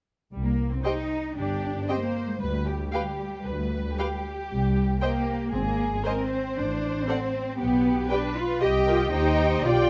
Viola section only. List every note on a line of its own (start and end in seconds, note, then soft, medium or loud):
0.85 0.93 G4 soft
0.85 0.93 C5 soft
1.89 1.97 G4 soft
1.89 1.98 C5 soft
2.94 3.02 G4 soft
2.94 3.02 B4 soft
3.99 4.07 G4 soft
3.99 4.07 B4 soft
5.02 5.10 C5 soft
6.05 6.13 C5 soft
7.07 7.15 A4 soft
7.07 7.15 C5 soft
8.11 8.19 G4 soft
8.11 8.19 B4 soft
8.62 8.70 G4 soft
8.62 9.10 D#5 soft
8.87 9.12 F4 medium
9.13 9.64 G4 soft
9.13 9.65 C5 soft
9.65 9.90 G4 medium
9.65 9.90 D5 medium